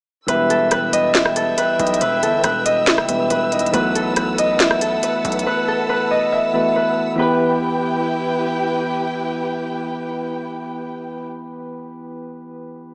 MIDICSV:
0, 0, Header, 1, 7, 480
1, 0, Start_track
1, 0, Key_signature, 1, "minor"
1, 0, Tempo, 431655
1, 315, Time_signature, 4, 2, 24, 8
1, 14393, End_track
2, 0, Start_track
2, 0, Title_t, "String section"
2, 0, Program_c, 0, 48
2, 315, Note_on_c, 0, 76, 75
2, 315, Note_on_c, 0, 79, 75
2, 315, Note_on_c, 0, 88, 92
2, 316, Note_on_c, 0, 71, 82
2, 4117, Note_off_c, 0, 76, 0
2, 4117, Note_off_c, 0, 79, 0
2, 4155, Note_on_c, 0, 78, 76
2, 4155, Note_on_c, 0, 81, 76
2, 7951, Note_off_c, 0, 71, 0
2, 7951, Note_off_c, 0, 88, 0
2, 7956, Note_off_c, 0, 81, 0
2, 7957, Note_off_c, 0, 78, 0
2, 7995, Note_on_c, 0, 64, 84
2, 7995, Note_on_c, 0, 71, 78
2, 7996, Note_on_c, 0, 67, 75
2, 7996, Note_on_c, 0, 79, 88
2, 12460, Note_off_c, 0, 64, 0
2, 12460, Note_off_c, 0, 67, 0
2, 12460, Note_off_c, 0, 71, 0
2, 12460, Note_off_c, 0, 79, 0
2, 14393, End_track
3, 0, Start_track
3, 0, Title_t, "Soft synth lead"
3, 0, Program_c, 1, 80
3, 315, Note_on_c, 1, 76, 108
3, 766, Note_off_c, 1, 76, 0
3, 1995, Note_on_c, 1, 75, 88
3, 2223, Note_off_c, 1, 75, 0
3, 2235, Note_on_c, 1, 76, 110
3, 2686, Note_off_c, 1, 76, 0
3, 3915, Note_on_c, 1, 75, 93
3, 4143, Note_off_c, 1, 75, 0
3, 14393, End_track
4, 0, Start_track
4, 0, Title_t, "Harp"
4, 0, Program_c, 2, 46
4, 314, Note_on_c, 2, 71, 113
4, 558, Note_on_c, 2, 69, 84
4, 794, Note_off_c, 2, 71, 0
4, 798, Note_on_c, 2, 71, 89
4, 1032, Note_on_c, 2, 75, 73
4, 1274, Note_on_c, 2, 76, 93
4, 1341, Note_off_c, 2, 75, 0
4, 1510, Note_off_c, 2, 69, 0
4, 1515, Note_on_c, 2, 69, 95
4, 1749, Note_off_c, 2, 71, 0
4, 1754, Note_on_c, 2, 71, 83
4, 2236, Note_off_c, 2, 71, 0
4, 2240, Note_on_c, 2, 71, 111
4, 2472, Note_off_c, 2, 69, 0
4, 2477, Note_on_c, 2, 69, 80
4, 2711, Note_off_c, 2, 71, 0
4, 2715, Note_on_c, 2, 71, 86
4, 2952, Note_on_c, 2, 75, 75
4, 3019, Note_off_c, 2, 76, 0
4, 3197, Note_on_c, 2, 76, 79
4, 3264, Note_off_c, 2, 75, 0
4, 3667, Note_off_c, 2, 71, 0
4, 3672, Note_on_c, 2, 71, 85
4, 4147, Note_off_c, 2, 71, 0
4, 4152, Note_on_c, 2, 71, 112
4, 4394, Note_off_c, 2, 69, 0
4, 4399, Note_on_c, 2, 69, 76
4, 4631, Note_off_c, 2, 71, 0
4, 4636, Note_on_c, 2, 71, 84
4, 4877, Note_on_c, 2, 75, 77
4, 4944, Note_off_c, 2, 76, 0
4, 5117, Note_on_c, 2, 76, 98
4, 5184, Note_off_c, 2, 75, 0
4, 5350, Note_off_c, 2, 69, 0
4, 5354, Note_on_c, 2, 69, 92
4, 5593, Note_off_c, 2, 71, 0
4, 5597, Note_on_c, 2, 71, 89
4, 6071, Note_off_c, 2, 71, 0
4, 6076, Note_on_c, 2, 71, 110
4, 6312, Note_off_c, 2, 69, 0
4, 6316, Note_on_c, 2, 69, 78
4, 6548, Note_off_c, 2, 71, 0
4, 6552, Note_on_c, 2, 71, 92
4, 6791, Note_on_c, 2, 75, 70
4, 6858, Note_off_c, 2, 76, 0
4, 7032, Note_on_c, 2, 76, 82
4, 7098, Note_off_c, 2, 75, 0
4, 7509, Note_off_c, 2, 71, 0
4, 7513, Note_on_c, 2, 71, 76
4, 7990, Note_off_c, 2, 71, 0
4, 7995, Note_on_c, 2, 71, 88
4, 8758, Note_off_c, 2, 69, 0
4, 8947, Note_off_c, 2, 76, 0
4, 10273, Note_off_c, 2, 71, 0
4, 14393, End_track
5, 0, Start_track
5, 0, Title_t, "Synth keys"
5, 0, Program_c, 3, 88
5, 297, Note_on_c, 3, 52, 71
5, 306, Note_on_c, 3, 55, 65
5, 316, Note_on_c, 3, 59, 61
5, 325, Note_on_c, 3, 67, 64
5, 334, Note_on_c, 3, 71, 79
5, 525, Control_c, 3, 64, 127
5, 3382, Note_off_c, 3, 52, 0
5, 3386, Note_off_c, 3, 55, 0
5, 3391, Note_off_c, 3, 59, 0
5, 3395, Note_off_c, 3, 67, 0
5, 3400, Note_off_c, 3, 71, 0
5, 3425, Note_on_c, 3, 52, 53
5, 3430, Note_on_c, 3, 55, 47
5, 3434, Note_on_c, 3, 59, 49
5, 3439, Note_on_c, 3, 67, 50
5, 3443, Note_on_c, 3, 71, 57
5, 4123, Note_off_c, 3, 52, 0
5, 4136, Note_on_c, 3, 52, 69
5, 4141, Note_off_c, 3, 59, 0
5, 4145, Note_on_c, 3, 57, 63
5, 4152, Note_off_c, 3, 55, 0
5, 4154, Note_on_c, 3, 59, 69
5, 4157, Note_off_c, 3, 67, 0
5, 4159, Note_off_c, 3, 71, 0
5, 4164, Note_on_c, 3, 66, 65
5, 4169, Control_c, 3, 64, 0
5, 4172, Note_on_c, 3, 71, 74
5, 4351, Control_c, 3, 64, 127
5, 7221, Note_off_c, 3, 52, 0
5, 7226, Note_off_c, 3, 57, 0
5, 7230, Note_off_c, 3, 59, 0
5, 7235, Note_off_c, 3, 66, 0
5, 7239, Note_off_c, 3, 71, 0
5, 7267, Note_on_c, 3, 52, 48
5, 7272, Note_on_c, 3, 57, 46
5, 7277, Note_on_c, 3, 59, 46
5, 7281, Note_on_c, 3, 66, 43
5, 7285, Note_on_c, 3, 71, 60
5, 7944, Note_off_c, 3, 52, 0
5, 7957, Note_on_c, 3, 52, 87
5, 7968, Note_off_c, 3, 59, 0
5, 7982, Note_on_c, 3, 59, 79
5, 7993, Note_off_c, 3, 57, 0
5, 7998, Note_off_c, 3, 66, 0
5, 8000, Note_off_c, 3, 71, 0
5, 8006, Note_on_c, 3, 67, 82
5, 8008, Control_c, 3, 64, 0
5, 8031, Note_on_c, 3, 71, 94
5, 8185, Control_c, 3, 64, 127
5, 12422, Note_off_c, 3, 52, 0
5, 12446, Note_off_c, 3, 59, 0
5, 12470, Note_off_c, 3, 67, 0
5, 12495, Note_off_c, 3, 71, 0
5, 14393, End_track
6, 0, Start_track
6, 0, Title_t, "808-style bass"
6, 0, Program_c, 4, 38
6, 314, Note_on_c, 4, 28, 113
6, 1710, Note_off_c, 4, 28, 0
6, 1995, Note_on_c, 4, 35, 108
6, 2226, Note_off_c, 4, 35, 0
6, 2235, Note_on_c, 4, 28, 108
6, 2476, Note_on_c, 4, 31, 102
6, 2492, Note_off_c, 4, 28, 0
6, 2703, Note_off_c, 4, 31, 0
6, 2716, Note_on_c, 4, 28, 112
6, 3196, Note_on_c, 4, 30, 104
6, 3212, Note_off_c, 4, 28, 0
6, 3423, Note_off_c, 4, 30, 0
6, 3435, Note_on_c, 4, 28, 104
6, 3665, Note_off_c, 4, 28, 0
6, 3675, Note_on_c, 4, 28, 105
6, 4136, Note_off_c, 4, 28, 0
6, 4156, Note_on_c, 4, 35, 116
6, 5551, Note_off_c, 4, 35, 0
6, 5836, Note_on_c, 4, 35, 106
6, 6066, Note_off_c, 4, 35, 0
6, 14393, End_track
7, 0, Start_track
7, 0, Title_t, "Drums"
7, 315, Note_on_c, 9, 42, 87
7, 427, Note_off_c, 9, 42, 0
7, 558, Note_on_c, 9, 42, 65
7, 669, Note_off_c, 9, 42, 0
7, 790, Note_on_c, 9, 42, 78
7, 796, Note_on_c, 9, 37, 73
7, 902, Note_off_c, 9, 42, 0
7, 907, Note_off_c, 9, 37, 0
7, 1036, Note_on_c, 9, 42, 83
7, 1147, Note_off_c, 9, 42, 0
7, 1275, Note_on_c, 9, 38, 121
7, 1275, Note_on_c, 9, 42, 70
7, 1386, Note_off_c, 9, 38, 0
7, 1387, Note_off_c, 9, 42, 0
7, 1396, Note_on_c, 9, 37, 100
7, 1507, Note_off_c, 9, 37, 0
7, 1513, Note_on_c, 9, 42, 92
7, 1624, Note_off_c, 9, 42, 0
7, 1754, Note_on_c, 9, 42, 84
7, 1865, Note_off_c, 9, 42, 0
7, 1995, Note_on_c, 9, 42, 54
7, 2076, Note_off_c, 9, 42, 0
7, 2076, Note_on_c, 9, 42, 55
7, 2155, Note_off_c, 9, 42, 0
7, 2155, Note_on_c, 9, 42, 57
7, 2235, Note_off_c, 9, 42, 0
7, 2235, Note_on_c, 9, 42, 91
7, 2346, Note_off_c, 9, 42, 0
7, 2478, Note_on_c, 9, 42, 64
7, 2590, Note_off_c, 9, 42, 0
7, 2710, Note_on_c, 9, 42, 77
7, 2715, Note_on_c, 9, 37, 75
7, 2821, Note_off_c, 9, 42, 0
7, 2826, Note_off_c, 9, 37, 0
7, 2955, Note_on_c, 9, 42, 83
7, 3066, Note_off_c, 9, 42, 0
7, 3194, Note_on_c, 9, 38, 114
7, 3194, Note_on_c, 9, 42, 71
7, 3305, Note_off_c, 9, 38, 0
7, 3305, Note_off_c, 9, 42, 0
7, 3315, Note_on_c, 9, 37, 99
7, 3426, Note_off_c, 9, 37, 0
7, 3432, Note_on_c, 9, 42, 93
7, 3543, Note_off_c, 9, 42, 0
7, 3673, Note_on_c, 9, 42, 82
7, 3785, Note_off_c, 9, 42, 0
7, 3914, Note_on_c, 9, 46, 70
7, 3915, Note_on_c, 9, 42, 55
7, 3995, Note_off_c, 9, 42, 0
7, 3995, Note_on_c, 9, 42, 52
7, 4026, Note_off_c, 9, 46, 0
7, 4075, Note_off_c, 9, 42, 0
7, 4075, Note_on_c, 9, 42, 54
7, 4155, Note_off_c, 9, 42, 0
7, 4155, Note_on_c, 9, 42, 86
7, 4266, Note_off_c, 9, 42, 0
7, 4398, Note_on_c, 9, 42, 67
7, 4509, Note_off_c, 9, 42, 0
7, 4629, Note_on_c, 9, 42, 79
7, 4635, Note_on_c, 9, 37, 73
7, 4741, Note_off_c, 9, 42, 0
7, 4746, Note_off_c, 9, 37, 0
7, 4875, Note_on_c, 9, 42, 83
7, 4986, Note_off_c, 9, 42, 0
7, 5114, Note_on_c, 9, 38, 119
7, 5115, Note_on_c, 9, 42, 72
7, 5225, Note_off_c, 9, 38, 0
7, 5226, Note_off_c, 9, 42, 0
7, 5234, Note_on_c, 9, 37, 101
7, 5346, Note_off_c, 9, 37, 0
7, 5352, Note_on_c, 9, 42, 94
7, 5463, Note_off_c, 9, 42, 0
7, 5593, Note_on_c, 9, 42, 84
7, 5704, Note_off_c, 9, 42, 0
7, 5835, Note_on_c, 9, 42, 53
7, 5916, Note_off_c, 9, 42, 0
7, 5916, Note_on_c, 9, 42, 52
7, 5995, Note_off_c, 9, 42, 0
7, 5995, Note_on_c, 9, 42, 57
7, 6106, Note_off_c, 9, 42, 0
7, 14393, End_track
0, 0, End_of_file